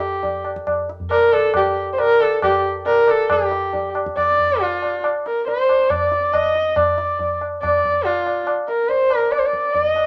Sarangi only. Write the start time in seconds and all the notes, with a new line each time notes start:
Already playing: G4
1.11 A#4
1.33 A4
1.56 G4
1.93 C5
2.00 A#4
2.21 A4
2.43 G4
2.87 A#4
3.10 A4
3.32 G4
4.17 D5
4.61 F4
5.27 A#4
5.48 C5
5.91 D5
6.33 D#5
6.77 D5
7.62 D5
8.05 F4
8.68 A#4
8.89 C5
9.17 A#4
9.31 D5
9.39 C5
9.46 D5
9.74 D5
9.85 D#5